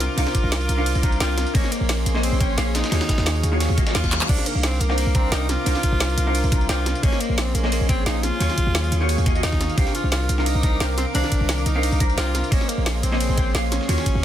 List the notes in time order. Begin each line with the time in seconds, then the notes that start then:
Already playing: C3 C4 D4 A#4 F5 G5 D6
0.00 F4, snare, closed hi-hat
0.16 C2 C3 C4 D4 D#4 A#4 F5, closed hi-hat, ride
0.27 snare
0.35 kick, closed hi-hat
0.44 C2
0.52 snare, closed hi-hat, ride
0.61 closed hi-hat
0.69 C2, closed hi-hat
0.77 C3 C4 D4 D#4 A#4 F5
0.86 closed hi-hat, ride
0.95 C2, closed hi-hat
1.03 C3 C4 D4 D#4 A#4 A#5, kick, closed hi-hat
1.12 closed hi-hat
1.20 C2 C3 C4 D4 F4 A#4 G5, snare, closed hi-hat, ride
1.37 snare, closed hi-hat
1.47 closed hi-hat
1.54 A#1 A#3 C#4 G#4 C5 C#5 D#5 C6, kick, closed hi-hat, ride
1.64 snare
1.72 A#3, closed hi-hat
1.81 A#1
1.89 snare, closed hi-hat, ride
2.06 A#1, closed hi-hat
2.15 A#3 G#4 C5 C#5 D#5, snare
2.23 C4, closed hi-hat, ride
2.32 A#1
2.40 A#3 C#4 G#4 C5 C#5 G5, kick, closed hi-hat
2.57 A#1 A#3 G#4 C5 C#5 F5, snare, closed hi-hat, ride
2.75 D#4, snare, closed hi-hat
2.84 snare, closed hi-hat
2.91 D#2 D#3 A#3 F4 F#4 G#4 C#5 F5 C#6, snare, closed hi-hat, ride
3.01 snare, closed hi-hat
3.09 kick, snare, closed hi-hat
3.18 D#2, snare, closed hi-hat
3.26 snare, closed hi-hat, ride
3.35 closed hi-hat
3.43 D#2, closed hi-hat
3.52 D#3 A#3 F4 F#4 G#4 C#5
3.60 snare, closed hi-hat, ride, reverse cymbal
3.69 D#2
3.77 D#3 A#3 F4 F#4 G#4 D#5, kick, closed hi-hat
3.86 D#3 F#3 A#3 F4 G#4 D#5, snare, closed hi-hat
3.95 D#2 F4, snare, closed hi-hat, ride
4.04 kick, snare, closed hi-hat
4.12 snare, clap, closed hi-hat
4.21 clap
4.28 C2 C3 C4 D4 D#4 A#4 F5 D6, kick, closed hi-hat, ride, crash
4.38 snare
4.46 A#3, closed hi-hat
4.55 C2
4.63 C4, snare, closed hi-hat, ride
4.80 C2 A#3, closed hi-hat
4.89 C3 C4 D4 D#4 A#4 F5, snare
4.98 A#3, closed hi-hat, ride
5.07 C2
5.15 C3 C4 D4 D#4 A#4 A#5, kick, closed hi-hat
5.32 C2 C3 C4 D4 D#4 A#4 G5, snare, closed hi-hat, ride
5.49 F4, snare, closed hi-hat
5.65 C2 C3 C4 D4 D#4 A#4 F5, closed hi-hat, ride
5.75 snare
5.83 kick, closed hi-hat
5.92 C2
6.00 snare, closed hi-hat, ride
6.09 closed hi-hat
6.18 C2, closed hi-hat
6.26 C3 C4 D4 D#4 A#4 F5
6.35 closed hi-hat, ride
6.44 C2, closed hi-hat
6.51 C3 C4 D4 D#4 A#4 A#5, kick, closed hi-hat
6.61 closed hi-hat
6.68 C2 C3 C4 D4 F4 A#4 G5, snare, closed hi-hat, ride
6.86 snare, closed hi-hat
6.95 closed hi-hat
7.02 A#1 A#3 C#4 G#4 C5 C#5 D#5 C6, kick, closed hi-hat, ride
7.12 snare
7.21 A#3, closed hi-hat
7.30 A#1
7.38 C4, snare, closed hi-hat, ride
7.55 A#1 A#3, closed hi-hat
7.63 A#3 G#4 C5 C#5 D#5, snare
7.72 A#3, closed hi-hat, ride
7.81 A#1
7.89 A#3 C4 G#4 C5 C#5 G5, kick, closed hi-hat
8.06 A#1 A#3 D#4 G#4 C5 C#5 F5, snare, closed hi-hat, ride
8.23 F4, snare, closed hi-hat
8.39 D#2 D#3 F#3 A#3 F4 G#4 C#5 F5 C#6, closed hi-hat, ride
8.50 snare
8.58 kick, closed hi-hat
8.67 D#2
8.75 snare, closed hi-hat, ride
8.84 closed hi-hat
8.92 D#2, closed hi-hat
9.01 D#3 A#3 F4 F#4 G#4 C#5
9.09 closed hi-hat, ride
9.18 D#2, closed hi-hat
9.26 D#3 A#3 F4 F#4 G#4 D#5, kick, closed hi-hat
9.34 D#3 A#3 F4 F#4 G#4 D#5, closed hi-hat
9.43 D#2 D#4, snare, closed hi-hat, ride
9.52 kick, snare
9.61 snare, closed hi-hat
9.70 closed hi-hat
9.77 C2 C3 C4 D4 D#4 G4 A#4 F5 D6, kick, closed hi-hat, ride
9.87 snare
9.95 F4, closed hi-hat
10.04 C2
10.12 F4, snare, closed hi-hat, ride
10.29 C2, closed hi-hat
10.38 C3 C4 D4 D#4 F4 A#4 F5, snare
10.46 D#4, closed hi-hat, ride
10.55 C2
10.63 C3 C4 D4 D#4 A#4 A#5, kick, closed hi-hat
10.80 C2 C3 C4 D4 A#4 G5, snare, closed hi-hat, ride
10.98 C4, snare, closed hi-hat
11.14 C2 C3 D#3 C4 D4 A#4 F5, closed hi-hat, ride
11.24 snare
11.32 kick, closed hi-hat
11.41 C2
11.49 snare, closed hi-hat, ride
11.58 closed hi-hat
11.66 C2 D#4, closed hi-hat
11.75 C3 C4 D4 D#4 A#4 F5
11.83 closed hi-hat, ride
11.92 C2, closed hi-hat
12.00 C3 C4 D4 D#4 A#4 A#5, kick, closed hi-hat
12.10 closed hi-hat
12.17 C2 C3 C4 D4 F4 A#4 G5, snare, closed hi-hat, ride
12.35 snare, closed hi-hat
12.44 closed hi-hat
12.51 A#1 C#3 A#3 C#4 G#4 C5 C#5 D#5 C6, kick, closed hi-hat, ride
12.61 snare
12.69 A#3, closed hi-hat
12.78 A#1
12.86 snare, closed hi-hat, ride
13.03 A#1 C4, closed hi-hat
13.12 A#3 G#4 C5 C#5 D#5, snare
13.20 closed hi-hat, ride
13.29 A#1
13.37 A#3 G#4 C5 C#5 G5, kick, closed hi-hat
13.54 A#1 A#3 G#4 C5 C#5 F5, snare, closed hi-hat, ride
13.72 C#4, snare, closed hi-hat
13.81 snare
13.88 D#2 D#3 A#3 F4 F#4 G#4 C#5 F5 C#6, closed hi-hat, ride
13.98 snare
14.06 kick, closed hi-hat
14.15 D#2